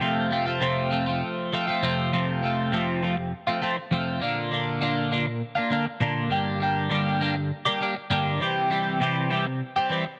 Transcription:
0.00 0.59 F2 medium
0.00 0.60 C3 medium
0.00 0.30 F3 medium
0.00 0.31 A3 loud
0.00 0.31 C4 medium
0.00 0.32 F4 loud
0.31 0.47 F3 medium
0.31 0.46 A3 medium
0.31 0.46 C4 medium
0.31 0.45 F4 medium
0.46 0.60 F3 medium
0.46 0.61 A3 medium
0.46 0.61 C4 medium
0.46 0.61 F4 medium
0.60 1.21 F2 medium
0.60 1.21 C3 loud
0.60 0.90 F3 medium
0.60 0.91 A3 medium
0.60 0.91 C4 loud
0.60 0.92 F4 medium
0.91 1.08 F3 medium
0.91 1.07 A3 medium
0.91 1.06 C4 medium
0.91 1.05 F4 medium
1.06 1.51 F3 medium
1.06 1.52 A3 medium
1.06 1.53 C4 medium
1.06 1.54 F4 medium
1.53 1.68 F3 medium
1.53 1.67 A3 medium
1.53 1.66 C4 medium
1.53 1.66 F4 medium
1.67 1.82 F3 medium
1.67 1.82 A3 medium
1.67 1.83 C4 medium
1.67 1.83 F4 medium
1.82 2.10 F2 loud
1.82 2.10 C3 loud
1.82 2.11 F3 loud
1.82 2.11 A3 loud
1.82 2.11 C4 loud
1.82 2.11 F4 loud
2.12 2.71 F2 medium
2.12 2.71 C3 medium
2.12 2.42 F3 medium
2.12 2.43 A3 medium
2.12 2.43 C4 loud
2.12 2.45 F4 medium
2.43 2.73 F3 medium
2.43 2.73 A3 medium
2.43 2.72 C4 medium
2.43 2.74 F4 medium
2.72 3.32 F2 medium
2.72 3.32 C3 medium
2.72 3.01 F3 medium
2.72 3.02 A3 loud
2.72 3.03 C4 medium
2.72 3.03 F4 medium
3.02 3.16 F3 medium
3.02 3.16 A3 medium
3.02 3.16 C4 medium
3.02 3.16 F4 medium
3.17 muted clean electric guitar stroke soft
3.47 3.60 F3 medium
3.47 3.61 A3 medium
3.47 3.62 C4 medium
3.47 3.63 F4 medium
3.62 3.77 F3 medium
3.62 3.76 A3 medium
3.62 3.76 C4 medium
3.62 3.76 F4 medium
3.77 muted clean electric guitar stroke medium
3.91 4.19 F2 loud
3.91 4.20 C3 loud
3.91 4.20 F3 loud
3.91 4.20 A3 loud
3.91 4.20 C4 loud
3.91 4.21 F4 loud
4.20 4.80 A#2 loud
4.20 4.50 D3 medium
4.20 4.51 A#3 loud
4.20 4.52 D4 loud
4.20 4.52 F4 medium
4.51 4.80 D3 medium
4.51 4.81 A#3 medium
4.51 4.82 D4 medium
4.51 4.82 F4 medium
4.81 5.41 A#2 medium
4.81 5.10 D3 loud
4.81 5.11 A#3 medium
4.81 5.12 D4 loud
4.81 5.12 F4 medium
5.11 5.27 D3 medium
5.11 5.26 A#3 medium
5.11 5.26 D4 medium
5.11 5.26 F4 medium
5.27 muted clean electric guitar stroke medium
5.55 5.70 A#3 medium
5.55 5.71 D4 medium
5.55 5.72 F4 medium
5.70 5.86 D3 medium
5.70 5.86 A#3 medium
5.70 5.86 D4 medium
5.70 5.85 F4 medium
5.86 muted clean electric guitar stroke medium
6.00 6.29 A#2 loud
6.00 6.29 D3 loud
6.00 6.29 A#3 loud
6.00 6.30 D4 loud
6.00 6.30 F4 loud
6.30 6.88 G2 medium
6.30 6.89 D3 medium
6.30 6.60 G3 loud
6.30 6.60 A#3 medium
6.30 6.61 D4 loud
6.30 6.62 G4 loud
6.60 6.90 G3 medium
6.60 6.90 A#3 medium
6.60 6.90 D4 medium
6.60 6.91 G4 medium
6.90 7.50 G2 medium
6.90 7.50 D3 loud
6.90 7.19 G3 loud
6.90 7.20 A#3 medium
6.90 7.21 D4 loud
6.90 7.22 G4 loud
7.21 7.36 G3 medium
7.21 7.36 A#3 medium
7.21 7.35 D4 medium
7.21 7.35 G4 medium
7.36 muted clean electric guitar stroke medium
7.65 7.79 G3 medium
7.65 7.81 A#3 medium
7.65 7.81 D4 medium
7.65 7.82 G4 medium
7.81 7.95 G3 medium
7.81 7.95 A#3 medium
7.81 7.95 D4 medium
7.81 7.95 G4 medium
7.96 muted clean electric guitar stroke medium
8.10 8.39 G2 loud
8.10 8.39 D3 loud
8.10 8.39 G3 loud
8.10 8.39 A#3 loud
8.10 8.40 D4 loud
8.10 8.40 G4 loud
8.40 8.99 C3 medium
8.40 8.69 E3 medium
8.40 8.70 G3 medium
8.40 8.71 C4 loud
8.40 8.71 G4 loud
8.70 9.00 E3 medium
8.70 9.00 G3 medium
8.70 9.01 C4 medium
8.70 9.02 G4 medium
9.00 9.60 C3 medium
9.00 9.29 E3 medium
9.00 9.29 G3 loud
9.00 9.30 C4 loud
9.00 9.31 G4 medium
9.30 9.46 E3 medium
9.30 9.46 G3 medium
9.30 9.46 C4 medium
9.30 9.45 G4 medium
9.46 muted clean electric guitar stroke medium
9.76 9.90 G3 medium
9.76 9.91 C4 medium
9.76 9.91 G4 medium
9.90 10.05 E3 medium
9.90 10.05 G3 medium
9.90 10.05 C4 medium
9.90 10.05 G4 medium
10.06 muted clean electric guitar stroke medium

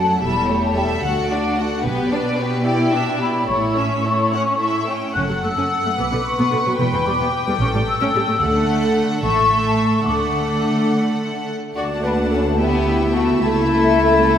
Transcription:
0.00 0.23 F#2 soft
0.00 0.22 F#3 soft
0.00 0.22 A4 soft
0.00 0.22 F#5 soft
0.00 0.18 A5 medium
0.21 0.72 E1 soft
0.21 1.02 E2 soft
0.21 0.48 G3 soft
0.21 0.48 A4 soft
0.21 0.47 E5 soft
0.21 0.64 B5 medium
0.48 0.77 A3 soft
0.48 0.77 G4 soft
0.48 0.76 C#5 soft
0.64 0.77 A5 medium
0.76 1.04 G3 soft
0.76 1.03 A4 soft
0.76 1.03 E5 soft
0.76 0.82 G5 medium
1.03 1.54 D2 medium
1.03 1.83 D2 medium
1.03 1.29 F#4 soft
1.03 1.29 A4 soft
1.03 1.83 F#5 medium
1.03 1.29 F#5 soft
1.30 1.59 D4 soft
1.30 1.58 F#4 soft
1.30 1.58 D5 soft
1.57 1.85 F#4 soft
1.57 1.85 A4 soft
1.57 1.85 F#5 soft
1.84 2.34 B1 medium
1.84 3.48 B2 medium
1.84 2.10 B3 medium
1.84 2.10 G4 medium
1.84 2.09 B4 soft
2.11 2.38 D4 soft
2.11 2.39 B4 soft
2.11 2.38 D5 soft
2.38 2.66 B3 soft
2.38 2.64 G4 soft
2.38 2.65 B4 soft
2.65 2.91 E4 soft
2.65 2.91 G4 medium
2.65 2.91 D5 soft
2.65 3.17 G5 medium
2.93 3.21 D4 soft
2.93 3.21 E4 soft
2.93 3.21 E5 soft
3.20 3.47 E4 soft
3.20 3.48 G4 soft
3.20 3.49 D5 soft
3.20 3.48 B5 medium
3.47 4.00 A1 medium
3.47 4.95 A2 soft
3.47 3.74 E4 soft
3.47 3.75 A4 soft
3.47 3.75 C#5 soft
3.47 4.84 C#6 medium
3.77 4.05 C#4 soft
3.77 4.05 C#5 soft
3.77 4.05 E5 soft
4.05 4.33 E4 soft
4.05 4.33 A4 soft
4.05 4.33 C#5 soft
4.32 4.60 C#4 soft
4.32 4.60 C#5 soft
4.32 4.41 F#5 soft
4.60 4.86 E4 soft
4.60 4.86 A4 soft
4.60 4.88 E5 soft
4.88 5.15 C#4 soft
4.88 5.16 C#5 soft
4.88 5.16 G5 soft
5.15 5.29 F#1 medium
5.15 5.21 F#2 medium
5.15 5.22 C#4 soft
5.15 5.94 A4 soft
5.15 6.75 F#5 soft
5.15 5.21 F#6 medium
5.29 5.34 F#2 soft
5.29 5.36 F#3 soft
5.43 5.48 F#2 soft
5.43 5.49 A3 soft
5.43 5.97 E6 medium
5.56 5.62 F#2 soft
5.56 5.63 C#4 soft
5.85 5.90 F#2 soft
5.85 5.90 A3 soft
5.98 6.11 B1 medium
5.98 6.04 B2 soft
5.98 6.04 B3 soft
5.98 7.61 B4 medium
5.98 6.25 D6 medium
6.12 6.18 B2 soft
6.12 6.17 D3 soft
6.27 6.79 C#6 medium
6.39 6.44 B2 medium
6.39 6.44 B3 medium
6.52 6.58 B2 soft
6.52 6.57 D3 soft
6.66 6.72 B2 soft
6.66 6.71 F#3 soft
6.79 6.92 E1 medium
6.79 6.85 E2 medium
6.79 6.85 B3 medium
6.79 8.38 G5 soft
6.79 7.06 B5 medium
6.93 6.99 E2 soft
6.93 6.99 E3 soft
7.07 7.13 E2 soft
7.07 7.12 G3 soft
7.07 7.60 D6 medium
7.20 7.26 E2 medium
7.20 7.25 B3 medium
7.47 7.52 E2 soft
7.47 7.53 G3 soft
7.60 7.72 A1 medium
7.60 7.66 A2 medium
7.60 7.66 C#4 medium
7.60 8.39 A4 medium
7.60 7.67 C#6 medium
7.74 7.79 A2 soft
7.74 7.80 G3 soft
7.88 8.40 E6 medium
8.01 8.06 A2 medium
8.01 8.06 C#4 medium
8.14 8.19 A2 soft
8.14 8.20 G3 medium
8.27 8.33 A2 soft
8.27 8.33 A3 soft
8.40 8.92 D2 medium
8.40 9.19 D3 medium
8.40 9.19 A3 medium
8.40 9.19 A4 medium
8.40 9.19 F#5 medium
9.22 9.75 A1 medium
9.22 10.07 A2 medium
9.22 10.06 A3 medium
9.22 10.05 A4 medium
9.22 10.07 E5 soft
9.22 9.62 C#6 medium
9.66 9.79 A5 medium
9.78 10.06 C#6 medium
10.07 10.60 D2 soft
10.07 11.57 D3 soft
10.07 11.54 A3 medium
10.07 11.54 A4 medium
10.07 11.54 F#5 soft
10.07 10.93 D6 medium
11.77 13.38 D2 medium
11.77 12.56 A3 soft
11.77 12.57 A3 soft
11.77 12.56 D4 soft
11.77 11.86 F#4 medium
11.77 12.57 F#4 soft
11.77 12.05 D5 medium
11.77 12.56 F#5 soft
11.77 12.56 A5 soft
11.77 11.84 D6 soft
12.03 12.12 D4 soft
12.03 12.33 B4 medium
12.03 12.12 B5 soft
12.31 12.41 C#4 soft
12.31 12.59 A4 soft
12.31 12.60 A5 soft
12.59 13.14 B3 medium
12.59 13.42 B3 soft
12.59 13.38 B3 soft
12.59 13.38 E4 soft
12.59 14.38 E4 soft
12.59 13.16 G4 medium
12.59 14.38 E5 soft
12.59 13.38 G5 soft
12.59 13.15 G5 soft
13.14 13.40 A3 soft
13.14 13.41 F#4 medium
13.14 13.22 F#5 soft
13.41 14.38 C#2 soft
13.41 14.38 C#2 medium
13.41 14.38 A3 medium
13.41 14.38 A3 soft
13.41 14.38 E4 medium
13.41 14.38 A4 medium
13.41 14.38 E5 medium
13.41 14.38 A5 soft

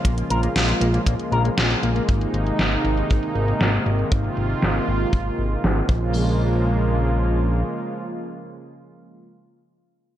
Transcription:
0.00 2.04 C#3 medium
0.00 2.04 F3 medium
0.00 5.86 G#3 medium
0.00 5.86 A#3 medium
0.00 2.04 F4 medium
0.05 0.23 A#1 loud
0.05 0.11 A#3 medium
0.05 kick loud
0.05 closed hi-hat medium
0.18 closed hi-hat soft
0.30 0.48 A#1 medium
0.30 0.40 A#4 medium
0.30 closed hi-hat medium
0.43 0.47 A#3 medium
0.43 closed hi-hat soft
0.56 0.74 A#1 medium
0.56 0.65 F4 medium
0.56 snare loud
0.56 closed hi-hat medium
0.69 closed hi-hat soft
0.81 0.99 A#1 loud
0.81 0.88 A#3 medium
0.81 closed hi-hat medium
0.94 1.00 A#3 medium
0.94 closed hi-hat soft
1.06 1.15 A#1 loud
1.06 1.13 A#3 medium
1.06 kick loud
1.06 closed hi-hat medium
1.20 closed hi-hat soft
1.32 1.50 A#1 medium
1.32 1.41 A#4 medium
1.32 closed hi-hat soft
1.45 1.48 A#3 medium
1.45 closed hi-hat soft
1.57 1.75 A#1 medium
1.57 1.67 F4 medium
1.57 snare loud
1.57 closed hi-hat medium
1.71 closed hi-hat soft
1.83 2.01 A#1 medium
1.83 1.89 A#3 loud
1.83 closed hi-hat medium
1.95 2.02 A#3 medium
1.95 closed hi-hat soft
2.08 2.26 G#1 loud
2.08 5.86 C3 medium
2.08 5.86 D#3 medium
2.08 4.10 D#4 medium
2.08 kick loud
2.08 closed hi-hat medium
2.21 closed hi-hat soft
2.34 2.52 G#1 medium
2.34 closed hi-hat medium
2.47 closed hi-hat soft
2.59 2.77 G#1 medium
2.59 snare loud
2.59 closed hi-hat medium
2.72 closed hi-hat soft
2.85 3.03 G#1 medium
2.85 closed hi-hat medium
2.97 closed hi-hat soft
3.10 3.19 G#1 loud
3.10 kick loud
3.10 closed hi-hat medium
3.23 closed hi-hat soft
3.35 3.53 G#1 medium
3.35 closed hi-hat soft
3.48 closed hi-hat soft
3.61 3.79 G#1 medium
3.61 snare loud
3.61 closed hi-hat medium
3.73 closed hi-hat soft
3.86 4.04 G#1 medium
3.86 closed hi-hat medium
3.99 closed hi-hat soft
4.11 4.30 G#1 loud
4.11 5.88 F4 medium
4.11 kick loud
4.11 closed hi-hat medium
4.24 closed hi-hat soft
4.37 4.55 G#1 medium
4.37 closed hi-hat medium
4.50 closed hi-hat soft
4.62 4.80 G#1 medium
4.62 snare loud
4.62 closed hi-hat medium
4.75 closed hi-hat soft
4.88 5.06 G#1 loud
4.88 closed hi-hat medium
5.01 closed hi-hat soft
5.13 5.31 G#1 medium
5.13 kick loud
5.26 closed hi-hat soft
5.39 5.57 G#1 medium
5.39 closed hi-hat soft
5.51 closed hi-hat soft
5.64 5.82 G#1 loud
5.64 snare loud
5.64 closed hi-hat medium
5.77 closed hi-hat soft
5.89 7.63 A#1 medium
5.89 9.26 C#3 medium
5.89 9.26 F3 medium
5.89 9.26 G#3 medium
5.89 9.26 A#3 medium
5.89 9.26 F4 medium
5.89 kick loud
5.89 crash medium

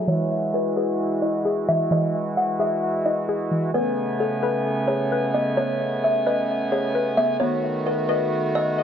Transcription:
0.07 1.45 E3 medium
0.07 3.71 E3 medium
0.07 3.71 G#3 medium
0.07 3.71 E4 medium
0.07 3.71 F#4 medium
0.07 0.51 C#5 loud
0.54 0.76 B4 medium
0.76 1.44 G#4 medium
0.76 1.20 B4 medium
1.22 2.60 E4 medium
1.22 1.65 D#5 medium
1.45 2.58 G#4 loud
1.68 1.90 E3 medium
1.68 1.90 E5 medium
1.91 3.28 E3 medium
1.91 2.35 D#5 medium
2.37 2.59 F#5 medium
2.59 3.28 G#4 loud
2.59 3.03 E5 medium
3.06 3.74 E4 medium
3.06 3.70 D#5 medium
3.29 3.74 G#4 loud
3.51 3.74 E3 medium
3.74 7.37 C#3 medium
3.74 8.83 A3 medium
3.74 8.83 B3 medium
3.74 5.12 B3 medium
3.74 4.17 B4 loud
3.74 7.37 G#5 medium
4.20 4.42 A4 medium
4.43 4.86 A4 medium
4.43 5.11 B4 loud
4.88 6.26 G#4 medium
4.88 5.31 C#5 medium
5.12 6.25 B4 loud
5.34 5.57 B3 medium
5.34 5.56 D#5 medium
5.57 6.95 B3 medium
5.57 6.00 C#5 loud
6.04 6.25 E5 medium
6.26 6.94 B4 medium
6.26 6.69 D#5 medium
6.72 7.41 G#4 medium
6.72 7.15 C#5 medium
6.95 7.41 B4 medium
7.17 7.40 B3 medium
7.17 7.39 E5 medium
7.40 8.83 D#3 medium
7.40 8.78 B3 medium
7.40 8.83 F#4 medium
7.40 7.83 C#5 loud
7.87 8.08 B4 medium
8.09 8.52 B4 medium
8.09 8.77 D#5 medium
8.55 8.83 A4 medium
8.55 8.83 D#5 medium
8.78 8.83 D#5 loud

